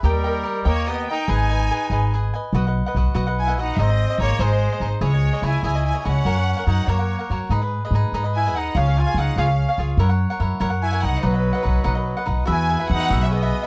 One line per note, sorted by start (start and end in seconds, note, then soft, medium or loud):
0.03 0.44 D#2 medium
0.03 0.63 G3 medium
0.03 0.25 G4 medium
0.03 0.25 A#4 medium
0.03 0.62 A#4 medium
0.03 0.24 D#5 medium
0.03 0.23 G5 medium
0.24 0.43 A#4 soft
0.24 0.44 D#5 soft
0.24 0.44 G5 medium
0.43 0.65 G4 soft
0.43 0.65 A#4 soft
0.43 0.65 D#5 medium
0.43 0.64 G5 soft
0.65 1.06 D#2 medium
0.65 0.91 A#3 medium
0.65 0.86 G4 soft
0.65 0.87 A#4 soft
0.65 0.86 C#5 medium
0.65 0.87 D#5 medium
0.65 0.87 G5 medium
0.87 1.09 B3 medium
0.87 1.08 G4 medium
0.87 1.08 A#4 soft
0.87 1.08 D#5 medium
0.87 1.08 D#5 soft
0.87 1.08 G5 medium
1.09 1.31 D#4 medium
1.09 1.29 A#4 soft
1.09 1.28 D#5 soft
1.09 1.27 G5 medium
1.09 1.29 G5 medium
1.28 1.69 G#1 medium
1.28 2.14 D#4 medium
1.28 1.50 G#4 medium
1.28 1.50 B4 medium
1.28 1.50 D#5 medium
1.28 2.13 G#5 loud
1.28 1.48 G#5 medium
1.50 1.70 B4 soft
1.50 1.71 D#5 soft
1.50 1.70 G#5 soft
1.71 1.91 G#4 soft
1.71 1.91 B4 medium
1.71 1.91 D#5 medium
1.71 1.90 G#5 medium
1.90 2.31 G#1 medium
1.90 2.13 G#4 medium
1.90 2.13 B4 medium
1.90 2.13 D#5 medium
1.90 2.13 G#5 medium
2.14 2.34 G#4 medium
2.14 2.34 B4 soft
2.14 2.34 D#5 soft
2.14 2.32 G#5 medium
2.34 2.54 B4 soft
2.34 2.55 D#5 soft
2.34 2.54 G#5 soft
2.53 2.80 B1 medium
2.53 2.65 F#4 medium
2.53 2.65 B4 medium
2.53 2.66 D#5 medium
2.53 2.65 F#5 medium
2.67 2.87 B4 soft
2.67 2.86 D#5 soft
2.67 2.85 F#5 soft
2.86 2.96 B4 soft
2.86 2.96 D#5 soft
2.86 2.96 F#5 soft
2.95 3.08 B1 medium
2.95 3.13 F#4 soft
2.95 3.14 B4 medium
2.95 3.15 D#5 medium
2.95 3.15 F#5 medium
3.15 3.57 B1 medium
3.15 3.26 F#4 medium
3.15 3.26 B4 medium
3.15 3.26 D#5 medium
3.15 3.25 F#5 medium
3.27 3.48 B4 soft
3.27 3.48 D#5 soft
3.27 3.46 F#5 soft
3.39 3.59 E4 medium
3.39 3.57 G#5 medium
3.48 3.58 B4 soft
3.48 3.58 D#5 soft
3.48 3.58 F#5 soft
3.57 3.70 A#1 medium
3.57 3.83 D#4 medium
3.57 3.78 F#4 medium
3.57 3.78 B4 medium
3.57 3.78 D#5 medium
3.57 3.79 F#5 soft
3.61 3.78 F#5 medium
3.77 4.04 G#1 medium
3.77 3.89 D#4 medium
3.77 3.89 G#4 medium
3.77 3.89 C5 medium
3.77 3.88 D#5 medium
3.77 4.20 D#5 medium
3.81 4.21 C4 medium
3.89 4.10 G#4 soft
3.89 4.10 C5 soft
3.89 4.09 D#5 soft
4.10 4.19 G#4 soft
4.10 4.20 C5 medium
4.10 4.20 D#5 soft
4.18 4.32 G#1 medium
4.18 4.43 A#3 medium
4.18 4.39 D#4 medium
4.18 4.39 G#4 medium
4.18 4.40 C5 soft
4.18 4.39 C#5 loud
4.18 4.40 D#5 medium
4.39 4.66 G#1 medium
4.39 4.87 G#3 medium
4.39 4.51 D#4 medium
4.39 4.51 G#4 medium
4.39 4.51 C5 medium
4.39 4.87 C5 medium
4.39 4.51 D#5 medium
4.52 4.73 G#4 soft
4.52 4.72 C5 soft
4.52 4.71 D#5 medium
4.73 4.80 G#4 soft
4.73 4.81 C5 soft
4.73 4.81 D#5 medium
4.80 4.94 G#1 medium
4.80 5.01 D#4 soft
4.80 5.00 G#4 medium
4.80 5.01 C5 soft
4.80 5.00 D#5 medium
5.01 5.28 C#2 medium
5.01 5.46 G#3 medium
5.01 5.12 E4 medium
5.01 5.12 G#4 medium
5.01 5.12 C#5 medium
5.01 5.41 C#5 medium
5.01 5.12 D#5 medium
5.13 5.33 G#4 soft
5.13 5.32 C#5 soft
5.13 5.32 D#5 soft
5.33 5.42 G#4 soft
5.33 5.43 C#5 medium
5.33 5.43 D#5 soft
5.42 5.55 C#2 medium
5.42 5.62 E4 medium
5.42 5.63 E4 medium
5.42 5.63 G#4 soft
5.42 5.63 C#5 soft
5.42 5.64 D#5 medium
5.42 5.63 G#5 medium
5.63 5.90 C#2 medium
5.63 5.74 E4 medium
5.63 5.83 E4 medium
5.63 5.74 G#4 medium
5.63 5.74 C#5 medium
5.63 5.74 D#5 medium
5.63 5.83 G#5 medium
5.75 5.95 G#4 soft
5.75 5.94 C#5 soft
5.75 5.93 D#5 medium
5.85 5.98 E4 medium
5.85 5.97 G#5 medium
5.94 6.04 G#4 soft
5.94 6.05 C#5 soft
5.94 6.04 D#5 medium
5.99 6.06 E4 soft
5.99 6.05 G#5 medium
6.04 6.18 C#2 medium
6.04 6.66 C#4 medium
6.04 6.25 E4 medium
6.04 6.25 G#4 soft
6.04 6.25 C#5 soft
6.04 6.26 D#5 medium
6.04 6.66 F#5 medium
6.25 6.52 F#2 medium
6.25 6.36 F#4 medium
6.25 6.36 A#4 medium
6.25 6.36 C#5 medium
6.25 6.36 F#5 medium
6.37 6.57 A#4 soft
6.37 6.56 C#5 soft
6.37 6.55 F#5 medium
6.57 6.66 A#4 soft
6.57 6.67 C#5 soft
6.57 6.67 F#5 soft
6.66 6.80 F#2 medium
6.66 6.90 D#4 medium
6.66 6.87 F#4 soft
6.66 6.87 A#4 soft
6.66 6.88 C#5 medium
6.66 6.86 F#5 medium
6.66 6.88 F#5 medium
6.87 7.15 F#2 medium
6.87 7.35 A#3 medium
6.87 6.99 F#4 medium
6.87 6.99 A#4 medium
6.87 7.34 C#5 medium
6.87 6.98 C#5 medium
6.87 6.98 F#5 medium
6.99 7.19 A#4 soft
6.99 7.18 C#5 soft
6.99 7.18 F#5 soft
7.19 7.30 A#4 soft
7.19 7.30 C#5 soft
7.19 7.29 F#5 soft
7.30 7.43 F#2 medium
7.30 7.50 F#4 medium
7.30 7.51 A#4 medium
7.30 7.51 C#5 medium
7.30 7.51 F#5 soft
7.49 7.77 G#2 medium
7.49 7.61 D#4 medium
7.49 7.61 G#4 medium
7.49 7.61 B4 medium
7.49 7.60 D#5 medium
7.62 7.83 G#4 soft
7.62 7.83 B4 soft
7.62 7.82 D#5 soft
7.85 7.94 G#4 soft
7.85 7.94 B4 soft
7.85 7.94 D#5 medium
7.91 8.04 G#2 medium
7.91 8.13 D#4 medium
7.95 8.13 G#4 medium
7.95 8.13 B4 medium
7.95 8.14 D#5 medium
8.12 8.54 G#2 medium
8.12 8.24 D#4 medium
8.12 8.24 G#4 medium
8.12 8.24 B4 medium
8.12 8.23 D#5 medium
8.24 8.46 G#4 soft
8.24 8.45 B4 soft
8.24 8.45 D#5 soft
8.35 8.59 E4 medium
8.35 8.54 G#5 medium
8.46 8.56 G#4 soft
8.46 8.56 B4 soft
8.46 8.55 D#5 soft
8.54 8.67 D#2 medium
8.54 8.75 D#4 soft
8.54 8.79 D#4 medium
8.54 8.74 G#4 soft
8.54 8.76 B4 soft
8.54 8.76 D#5 medium
8.54 8.76 F#5 medium
8.75 9.02 C#2 medium
8.75 9.00 C#4 medium
8.75 8.86 F4 medium
8.75 8.86 G#4 medium
8.75 8.86 C#5 medium
8.75 8.86 F5 medium
8.75 8.98 F5 medium
8.87 9.07 G#4 soft
8.87 9.06 C#5 soft
8.87 9.05 F5 soft
8.98 9.20 F4 medium
8.98 9.17 G#5 medium
9.06 9.17 G#4 soft
9.06 9.17 C#5 soft
9.06 9.16 F5 soft
9.14 9.28 C#2 medium
9.14 9.36 F4 soft
9.14 9.37 G#4 medium
9.14 9.37 C#5 medium
9.14 9.37 F#5 medium
9.19 9.40 D#4 medium
9.19 9.38 F5 medium
9.36 9.63 C#2 medium
9.36 9.84 C#4 medium
9.36 9.48 F4 medium
9.36 9.48 G#4 medium
9.36 9.47 C#5 medium
9.36 9.84 F5 medium
9.36 9.46 F5 medium
9.47 9.69 G#4 soft
9.47 9.68 C#5 soft
9.47 9.67 F5 soft
9.69 9.78 G#4 soft
9.69 9.78 C#5 soft
9.69 9.78 F5 medium
9.78 9.91 C#2 medium
9.78 9.98 F4 medium
9.78 9.99 G#4 medium
9.78 9.99 C#5 medium
9.78 9.99 F5 medium
9.97 10.25 F#2 medium
9.97 10.09 E4 medium
9.97 10.10 A#4 medium
9.97 10.09 C#5 medium
9.97 10.08 F#5 medium
10.09 10.31 A#4 soft
10.09 10.30 C#5 medium
10.09 10.29 F#5 medium
10.30 10.39 A#4 soft
10.30 10.40 C#5 soft
10.30 10.40 F#5 medium
10.40 10.53 F#2 medium
10.40 10.59 E4 medium
10.40 10.59 A#4 medium
10.40 10.59 C#5 medium
10.40 10.60 F#5 medium
10.60 11.05 F#2 medium
10.60 10.71 E4 medium
10.60 10.70 A#4 medium
10.60 10.70 C#5 medium
10.60 10.69 F#5 loud
10.70 10.92 A#4 soft
10.70 10.91 C#5 soft
10.70 10.91 F#5 medium
10.82 11.06 E4 medium
10.82 11.01 G#5 medium
10.92 11.01 A#4 soft
10.92 11.01 C#5 soft
10.92 11.02 F#5 soft
11.01 11.16 C2 medium
11.01 11.26 D#4 medium
11.01 11.22 E4 soft
11.01 11.22 A#4 soft
11.01 11.22 C#5 medium
11.01 11.23 F#5 medium
11.01 11.22 F#5 medium
11.23 11.50 B1 medium
11.23 12.28 F#3 medium
11.23 11.33 D#4 medium
11.23 11.33 B4 medium
11.23 12.27 B4 medium
11.23 11.33 D#5 medium
11.23 11.32 F#5 medium
11.34 11.53 B4 soft
11.34 11.53 D#5 soft
11.34 11.52 F#5 soft
11.53 11.62 B4 soft
11.53 11.62 D#5 soft
11.53 11.63 F#5 soft
11.62 11.78 B1 medium
11.62 11.83 D#4 medium
11.62 11.83 B4 soft
11.62 11.84 D#5 soft
11.62 11.83 F#5 medium
11.84 12.13 B1 medium
11.84 11.95 D#4 medium
11.84 11.95 B4 medium
11.84 11.94 D#5 medium
11.84 11.94 F#5 medium
11.95 12.17 B4 soft
11.95 12.16 D#5 medium
11.95 12.15 F#5 soft
12.17 12.25 B4 soft
12.17 12.25 D#5 soft
12.17 12.27 F#5 soft
12.26 12.41 B1 medium
12.26 12.45 D#4 medium
12.26 12.46 B4 medium
12.26 12.46 D#5 medium
12.26 12.47 F#5 medium
12.45 12.75 E2 medium
12.45 13.67 B3 medium
12.45 12.68 F#4 medium
12.45 13.67 F#4 medium
12.45 12.69 G#4 medium
12.45 13.67 G#4 medium
12.45 12.69 B4 medium
12.45 12.69 E5 medium
12.50 12.89 E4 medium
12.50 12.88 G#5 medium
12.69 12.79 F#4 soft
12.69 12.80 G#4 medium
12.69 12.79 B4 medium
12.69 12.78 E5 medium
12.80 13.00 G#4 soft
12.80 12.99 B4 soft
12.80 12.99 E5 medium
12.90 13.11 E2 medium
12.90 13.27 D#4 medium
12.90 13.22 F#5 loud
13.00 13.09 G#4 soft
13.00 13.09 B4 soft
13.00 13.10 E5 medium
13.10 13.50 B1 medium
13.10 13.30 F#4 medium
13.10 13.30 G#4 medium
13.10 13.32 B4 medium
13.10 13.32 E5 medium
13.23 13.35 C#4 soft
13.23 13.31 E5 medium
13.31 13.67 B3 medium
13.31 13.41 F#4 soft
13.31 13.42 G#4 medium
13.31 13.41 B4 soft
13.31 13.67 D#5 medium
13.31 13.41 E5 medium
13.42 13.63 G#4 soft
13.42 13.62 B4 soft
13.42 13.62 E5 medium
13.63 13.67 E5 medium